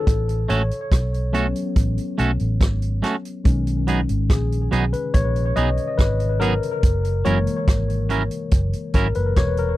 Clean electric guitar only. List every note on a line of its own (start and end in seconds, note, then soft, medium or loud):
0.49 0.61 A3 medium
0.49 0.61 C#4 medium
0.49 0.61 F#4 medium
0.49 0.61 A4 loud
1.33 1.45 A3 medium
1.33 1.46 C#4 medium
1.33 1.46 F#4 medium
1.33 1.46 A4 medium
2.18 2.30 A3 medium
2.18 2.30 C#4 medium
2.18 2.30 F#4 medium
2.18 2.31 A4 medium
3.02 3.14 A3 medium
3.02 3.15 C#4 medium
3.02 3.15 F#4 medium
3.02 3.15 A4 medium
3.87 3.99 F#3 medium
3.87 3.99 B3 medium
3.87 4.00 D#4 medium
3.87 4.00 G#4 medium
4.71 4.83 F#3 medium
4.71 4.84 B3 medium
4.71 4.84 D#4 medium
4.71 4.84 G#4 medium
5.56 5.68 F#3 medium
5.56 5.68 B3 medium
5.56 5.68 D#4 medium
5.56 5.69 G#4 loud
6.41 6.53 F#3 medium
6.41 6.53 B3 medium
6.41 6.53 D#4 medium
6.41 6.53 G#4 medium
7.25 7.37 F#3 medium
7.25 7.37 C#4 medium
7.25 7.38 E4 medium
7.25 7.38 A#4 medium
8.09 8.21 F#3 medium
8.09 8.22 C#4 medium
8.09 8.22 E4 medium
8.09 8.22 A#4 medium
8.94 9.06 F#3 medium
8.94 9.06 C#4 medium
8.94 9.07 E4 medium
8.94 9.07 A#4 medium